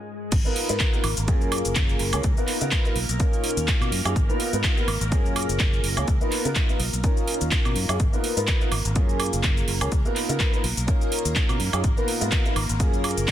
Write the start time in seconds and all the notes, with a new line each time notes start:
Already playing: G#3 G#4
0.32 G#1 A#3 A#4, kick, closed hi-hat, crash, shaker
0.45 B3 D#4 F4 A#4, shaker
0.56 open hi-hat
0.69 G#2 B3 D#4 F4 A#4, closed hi-hat, shaker
0.80 kick, clap, closed hi-hat, shaker
0.93 B3 D#4 F4 A#4, shaker
1.04 G#1, open hi-hat, high woodblock
1.17 G#1, closed hi-hat, shaker
1.27 F#2 A#3 C#4 F4 G#4, kick, closed hi-hat, shaker
1.41 shaker
1.52 open hi-hat, high woodblock
1.58 closed hi-hat
1.65 F#1, closed hi-hat, shaker
1.75 kick, clap, closed hi-hat, shaker
1.89 shaker
1.99 F#1, open hi-hat
2.13 C#2 A#3 C#4 F4 G#4, closed hi-hat, high woodblock, shaker
2.23 kick, closed hi-hat, shaker
2.37 B3 D#4 F4 A#4, shaker
2.47 clap, open hi-hat
2.61 C#3 B3 D#4 F4 A#4, closed hi-hat, shaker
2.71 kick, clap, closed hi-hat, shaker
2.85 B3 D#4 F4 A#4, shaker
2.95 B1, open hi-hat
3.09 B1, closed hi-hat, shaker
3.19 C#4 D#4 F4 A#4, kick, closed hi-hat, shaker
3.33 shaker
3.44 open hi-hat
3.51 closed hi-hat
3.57 D#2, closed hi-hat, shaker
3.68 kick, clap, closed hi-hat, shaker
3.81 B2, high woodblock, shaker
3.91 F#2, open hi-hat
4.05 F#2 C#4 D#4 F4 G#4, closed hi-hat, high woodblock, shaker
4.16 G#1, kick, closed hi-hat, shaker
4.29 B3 D#4 F4 A#4, shaker
4.40 open hi-hat
4.53 G#2 B3 D#4 F4 A#4, closed hi-hat, shaker
4.64 kick, clap, closed hi-hat, shaker
4.77 B3 D#4 F4 A#4, shaker
4.88 G#1, open hi-hat, high woodblock
5.01 G#1, closed hi-hat, shaker
5.11 F#2 A#3 C#4 F4 G#4, kick, closed hi-hat, shaker
5.26 shaker
5.36 open hi-hat, high woodblock
5.43 closed hi-hat
5.49 F#1, closed hi-hat, shaker
5.59 kick, clap, closed hi-hat, shaker
5.73 shaker
5.83 F#1, open hi-hat
5.96 C#2 A#3 C#4 F4 G#4, closed hi-hat, high woodblock, shaker
6.08 C#2, kick, closed hi-hat, shaker
6.21 B3 D#4 F4 A#4, shaker
6.31 clap, open hi-hat
6.45 C#3 B3 D#4 F4 A#4, closed hi-hat, shaker
6.55 kick, clap, closed hi-hat, shaker
6.69 B3 D#4 F4 A#4, shaker
6.80 B1, open hi-hat
6.93 B1, closed hi-hat, shaker
7.03 C#4 D#4 F4 A#4, kick, closed hi-hat, shaker
7.17 shaker
7.28 open hi-hat
7.34 closed hi-hat
7.41 D#2, closed hi-hat, shaker
7.51 kick, clap, closed hi-hat, shaker
7.65 B2, high woodblock, shaker
7.76 F#2, open hi-hat
7.89 F#2 C#4 D#4 F4 G#4, closed hi-hat, high woodblock, shaker
8.00 G#1 A#3 A#4, kick, closed hi-hat, shaker
8.13 B3 D#4 F4 A#4, shaker
8.24 open hi-hat
8.37 G#2 B3 D#4 F4 A#4, closed hi-hat, shaker
8.47 kick, clap, closed hi-hat, shaker
8.61 B3 D#4 F4 A#4, shaker
8.72 G#1, open hi-hat, high woodblock
8.85 G#1, closed hi-hat, shaker
8.95 F#2 A#3 C#4 F4 G#4, kick, closed hi-hat, shaker
9.09 shaker
9.20 open hi-hat, high woodblock
9.26 closed hi-hat
9.33 F#1, closed hi-hat, shaker
9.43 kick, clap, closed hi-hat, shaker
9.57 shaker
9.68 F#1, open hi-hat
9.81 C#2 A#3 C#4 F4 G#4, closed hi-hat, high woodblock, shaker
9.92 C#2, kick, closed hi-hat, shaker
10.05 B3 D#4 F4 A#4, shaker
10.16 clap, open hi-hat
10.29 C#3 B3 D#4 F4 A#4, closed hi-hat, shaker
10.40 kick, clap, closed hi-hat, shaker
10.53 B3 D#4 F4 A#4, shaker
10.64 B1, open hi-hat
10.77 B1, closed hi-hat, shaker
10.87 C#4 D#4 F4 A#4, kick, closed hi-hat, shaker
11.01 shaker
11.12 open hi-hat
11.19 closed hi-hat
11.25 D#2, closed hi-hat, shaker
11.36 kick, clap, closed hi-hat, shaker
11.49 B2, high woodblock, shaker
11.60 F#2, open hi-hat
11.73 F#2 C#4 D#4 F4 G#4, closed hi-hat, high woodblock, shaker
11.84 G#1, kick, closed hi-hat, shaker
11.97 B3 D#4 F4 A#4, shaker
12.08 open hi-hat
12.20 G#2 B3 D#4 F4 A#4, closed hi-hat, shaker
12.32 kick, clap, closed hi-hat, shaker
12.45 B3 D#4 F4 A#4, shaker
12.56 G#1, open hi-hat, high woodblock
12.69 G#1, closed hi-hat, shaker
12.79 F#2 A#3 C#4 F4 G#4, kick, closed hi-hat, shaker
12.94 shaker
13.04 open hi-hat, high woodblock
13.11 closed hi-hat
13.17 F#1, closed hi-hat, shaker
13.28 kick, clap, closed hi-hat, shaker